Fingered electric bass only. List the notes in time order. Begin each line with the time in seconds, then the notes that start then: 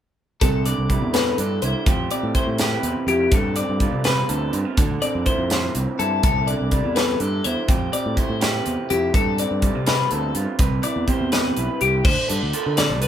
0.42 C2
0.78 C2
1.02 E2
1.38 G2
1.62 C2
1.87 F2
2.23 A2
2.47 A2
2.83 E2
3.07 F2
3.32 G2
3.69 G2
3.92 C3
4.30 D2
4.53 G2
4.78 D2
5.15 F2
5.38 F2
5.75 C2
5.99 G2
6.23 C2
6.61 C2
6.85 E2
7.20 G2
7.45 E2
7.69 F2
8.06 A2
8.30 A2
8.66 E2
8.91 F2
9.14 G2
9.51 G2
9.75 C3
10.12 D2
10.35 G2
10.59 C2
10.96 E2
11.21 E2
11.57 B1
11.81 C2
12.05 D2
12.30 G2
12.43 D2
12.66 D3
12.90 C2